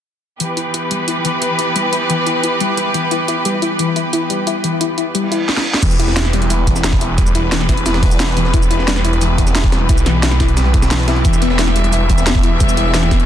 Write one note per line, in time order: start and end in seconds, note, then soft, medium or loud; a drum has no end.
0.40 0.50 E3 medium
0.40 5.45 E3 medium
0.40 5.45 B3 medium
0.40 5.45 G4 medium
0.40 5.45 B4 medium
0.40 closed hi-hat medium
0.57 0.63 E4 medium
0.57 closed hi-hat medium
0.74 0.80 E4 medium
0.74 closed hi-hat medium
0.91 1.01 G3 medium
0.91 closed hi-hat medium
1.08 1.14 E4 medium
1.08 closed hi-hat medium
1.25 1.35 E3 medium
1.25 closed hi-hat medium
1.42 1.48 E4 medium
1.42 closed hi-hat medium
1.59 1.65 E4 medium
1.59 closed hi-hat medium
1.76 1.86 G3 medium
1.76 closed hi-hat medium
1.93 1.99 E4 medium
1.93 closed hi-hat medium
2.10 2.20 E3 medium
2.10 closed hi-hat medium
2.27 2.32 E4 medium
2.27 closed hi-hat medium
2.43 2.49 E4 medium
2.43 closed hi-hat medium
2.60 2.70 G3 medium
2.60 closed hi-hat medium
2.77 2.83 E4 medium
2.77 closed hi-hat medium
2.94 3.04 E3 medium
2.94 closed hi-hat medium
3.11 3.17 E4 medium
3.11 closed hi-hat medium
3.28 3.34 E4 medium
3.28 closed hi-hat medium
3.45 3.55 G3 medium
3.45 closed hi-hat medium
3.62 3.68 E4 medium
3.62 closed hi-hat medium
3.79 3.89 E3 medium
3.79 closed hi-hat medium
3.96 4.02 E4 medium
3.96 closed hi-hat medium
4.13 4.19 E4 medium
4.13 closed hi-hat medium
4.30 4.40 G3 medium
4.30 closed hi-hat medium
4.47 4.53 E4 medium
4.47 closed hi-hat medium
4.64 4.74 E3 medium
4.64 closed hi-hat medium
4.81 4.87 E4 medium
4.81 closed hi-hat medium
4.98 5.04 E4 medium
4.98 closed hi-hat medium
5.15 5.25 G3 medium
5.15 closed hi-hat medium
5.15 reverse cymbal medium
5.32 5.38 E4 medium
5.32 closed hi-hat medium
5.49 snare medium
5.57 snare medium
5.74 snare medium
5.82 7.17 E1 loud
5.82 13.26 E3 medium
5.82 5.92 E3 medium
5.82 13.26 B3 medium
5.82 13.26 G4 medium
5.82 11.22 B4 medium
5.82 kick loud
5.82 closed hi-hat medium
5.82 crash medium
5.82 shaker soft
5.91 shaker medium
5.99 6.05 E4 medium
5.99 closed hi-hat medium
6.08 snare soft
6.16 6.22 E4 medium
6.16 snare loud
6.16 closed hi-hat medium
6.16 shaker soft
6.25 snare soft
6.33 6.43 G3 medium
6.33 closed hi-hat medium
6.42 closed hi-hat soft
6.50 6.56 E4 medium
6.50 closed hi-hat medium
6.50 closed hi-hat loud
6.50 shaker medium
6.67 6.77 E3 medium
6.67 kick medium
6.67 closed hi-hat medium
6.67 shaker soft
6.76 snare soft
6.76 shaker medium
6.84 6.90 E4 medium
6.84 snare loud
6.84 closed hi-hat medium
6.84 shaker soft
6.93 kick loud
6.93 snare soft
7.01 7.07 E4 medium
7.01 closed hi-hat medium
7.18 8.52 E1 medium
7.18 7.28 G3 medium
7.18 kick loud
7.18 closed hi-hat medium
7.18 shaker soft
7.27 shaker medium
7.35 7.41 E4 medium
7.35 closed hi-hat medium
7.52 7.62 E3 medium
7.52 snare loud
7.52 closed hi-hat medium
7.52 shaker soft
7.60 snare medium
7.60 closed hi-hat soft
7.69 7.75 E4 medium
7.69 kick medium
7.69 snare soft
7.69 closed hi-hat medium
7.77 closed hi-hat soft
7.86 7.92 E4 medium
7.86 snare loud
7.86 closed hi-hat medium
7.86 shaker medium
7.94 snare loud
7.94 closed hi-hat medium
8.03 8.13 G3 medium
8.03 kick loud
8.03 closed hi-hat medium
8.03 open hi-hat medium
8.03 shaker soft
8.11 shaker medium
8.20 8.26 E4 medium
8.20 snare loud
8.20 closed hi-hat medium
8.20 shaker soft
8.28 snare soft
8.37 8.47 E3 medium
8.37 closed hi-hat medium
8.45 snare soft
8.54 9.88 E1 medium
8.54 8.60 E4 medium
8.54 kick loud
8.54 closed hi-hat medium
8.54 shaker soft
8.62 shaker medium
8.71 8.77 E4 medium
8.71 closed hi-hat medium
8.79 snare soft
8.88 8.97 G3 medium
8.88 snare loud
8.88 closed hi-hat medium
8.88 shaker soft
8.96 snare soft
9.04 9.10 E4 medium
9.04 closed hi-hat medium
9.13 closed hi-hat soft
9.21 9.31 E3 medium
9.21 closed hi-hat medium
9.21 shaker soft
9.38 9.44 E4 medium
9.38 kick medium
9.38 closed hi-hat medium
9.38 shaker soft
9.47 snare soft
9.47 shaker medium
9.55 9.61 E4 medium
9.55 snare loud
9.55 closed hi-hat medium
9.55 shaker soft
9.64 kick loud
9.64 snare soft
9.72 9.82 G3 medium
9.72 snare loud
9.72 closed hi-hat medium
9.89 11.23 B1 medium
9.89 9.95 E4 medium
9.89 kick loud
9.89 closed hi-hat medium
9.89 shaker soft
9.98 shaker medium
10.06 10.16 E3 medium
10.06 snare medium
10.06 closed hi-hat medium
10.23 10.29 E4 medium
10.23 snare loud
10.23 closed hi-hat medium
10.23 shaker soft
10.32 snare soft
10.32 closed hi-hat soft
10.40 10.46 E4 medium
10.40 kick medium
10.40 snare soft
10.40 closed hi-hat medium
10.48 closed hi-hat soft
10.57 10.67 G3 medium
10.57 snare loud
10.57 closed hi-hat medium
10.57 shaker medium
10.65 closed hi-hat soft
10.74 10.80 E4 medium
10.74 kick loud
10.74 snare soft
10.74 closed hi-hat medium
10.74 shaker soft
10.82 snare loud
10.82 closed hi-hat medium
10.82 shaker medium
10.91 11.01 E3 medium
10.91 snare loud
10.91 closed hi-hat medium
10.91 shaker soft
10.99 snare soft
10.99 closed hi-hat medium
11.08 11.14 E4 medium
11.08 snare loud
11.08 closed hi-hat medium
11.16 closed hi-hat soft
11.25 12.59 E1 loud
11.25 11.35 E3 medium
11.25 13.26 E5 medium
11.25 kick loud
11.25 closed hi-hat medium
11.25 shaker soft
11.33 shaker medium
11.42 11.48 B3 medium
11.42 closed hi-hat medium
11.50 snare soft
11.59 11.65 E4 medium
11.59 snare loud
11.59 closed hi-hat medium
11.59 shaker soft
11.67 snare soft
11.76 11.86 G3 medium
11.76 closed hi-hat medium
11.84 closed hi-hat soft
11.93 11.99 E4 medium
11.93 closed hi-hat medium
11.93 shaker soft
12.10 12.20 E3 medium
12.10 kick medium
12.10 closed hi-hat medium
12.10 shaker soft
12.18 snare soft
12.18 shaker medium
12.26 12.32 B3 medium
12.26 snare loud
12.26 closed hi-hat medium
12.26 shaker soft
12.35 kick loud
12.35 snare soft
12.43 12.49 E4 medium
12.43 closed hi-hat medium
12.60 13.26 E1 loud
12.60 12.70 G3 medium
12.60 kick loud
12.60 closed hi-hat medium
12.60 shaker medium
12.69 shaker medium
12.77 12.83 E4 medium
12.77 closed hi-hat medium
12.94 13.04 E3 medium
12.94 snare loud
12.94 closed hi-hat medium
12.94 shaker medium
13.03 snare soft
13.03 closed hi-hat soft
13.11 13.17 B3 medium
13.11 kick medium
13.11 snare soft
13.11 closed hi-hat medium
13.20 closed hi-hat soft